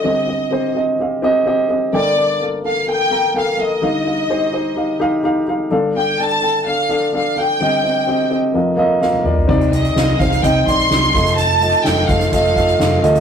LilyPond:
<<
  \new Staff \with { instrumentName = "Violin section" } { \time 4/4 \key c \dorian \tempo 4 = 127 ees''4. r2 r8 | d''4 r8 f''8 g''4 f''8 ees''8~ | ees''2~ ees''8 r4. | r8 g''8 a''4 f''4 f''8 g''8~ |
g''4. r2 r8 | r8 ees''4 f''8 g''8 c'''4. | a''4 g''8 f''8 f''4. r8 | }
  \new Staff \with { instrumentName = "Grand piano" } { \time 4/4 \key c \dorian <c' g' ees''>8 <c' g' ees''>8 <c' g' c''>8 <c' g' ees''>8 <c' g' f''>8 <c' g' ees''>8 <c' g' ees''>8 <c' g' ees''>8 | <bes a' g''>8 <bes a' a''>8 <bes a' f''>8 <bes a' a''>8 <bes a' g''>8 <bes a' bes''>8 <bes a' g''>8 <bes a' f''>8 | <ees' g' f''>8 <ees' g' f''>8 <ees' g' c''>8 <ees' g' c''>8 <ees' g' f''>8 <ees' g' f''>8 <ees' g' f''>8 <ees' g' f''>8 | <d' a' f''>8 <d' a' f''>8 <d' a' d''>8 <d' a' g''>8 <d' a' f''>8 <d' a' f''>8 <d' a' f''>8 <d' a' f''>8 |
<c' g' ees''>8 <c' g' ees''>8 <c' g' ees''>8 <c' g' ees''>8 <bes f' ees''>8 <bes f' ees''>8 <bes f' f''>8 <bes f' d''>8 | <c' ees' d''>8 <c' ees' d''>8 <c' ees' f''>8 <c' ees' c''>8 <c' ees' ees''>8 <c' ees' d''>8 <c' ees' g'>8 <a f' ees''>8~ | <a f' ees''>8 <a f' ees''>8 <a f' ees''>8 <a f' ees''>8 <a f' ees''>8 <a f' ees''>8 <a f' f''>8 <a f' ees''>8 | }
  \new Staff \with { instrumentName = "Grand piano" } { \clef bass \time 4/4 \key c \dorian <g,, g,>1 | <g,, g,>1 | <g,, g,>1 | <g,, g,>1 |
<g,, g,>2 <f,, f,>2 | c4. r2 r8 | r1 | }
  \new Staff \with { instrumentName = "String section" } { \time 4/4 \key c \dorian << { r1 | r1 | r1 | r1 |
r1 | <c ees'>2.~ <c ees'>8 <f ees' a'>8~ | <f ees' a'>1 | } \\ { r1 | r1 | r1 | r1 |
r1 | c'1~ | c'1 | } >> }
  \new Staff \with { instrumentName = "Fingered electric bass" } { \clef bass \time 4/4 \key c \dorian r1 | r1 | r1 | r1 |
r1 | c,4 c,8 c,8 c,8 bes,,8 c,8 f,,8~ | f,,4 f,,8 f,,8 f,,8 f,,8 f,,8 d,8 | }
  \new DrumStaff \with { instrumentName = "Drums" } \drummode { \time 4/4 r4 r4 r4 r4 | r4 r4 r4 r4 | r4 r4 r4 r4 | r4 r4 r4 r4 |
r4 r4 r4 sn16 tommh16 toml16 tomfh16 | <cymc bd>16 hh16 hh16 hh16 sn8 <hh bd>16 <hh sn>16 <hh bd>8 <hh bd>16 hh16 sn8 <hh bd>16 hh16 | hh8 hh16 hh16 sn16 hh16 <hh bd>16 <hh sn>16 <hh bd>16 hh16 <hh bd>16 hh16 sn8 hh16 hh16 | }
>>